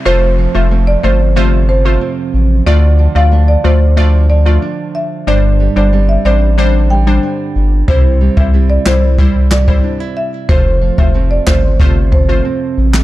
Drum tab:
CP |----------------|----------------|----------------|------x---x-----|
SD |----------------|----------------|----------------|------o---o-----|
BD |----------------|----------------|----------------|o--o----o--o----|

CP |------x--------x|
SD |------o--------o|
BD |o--o--o-o-o-----|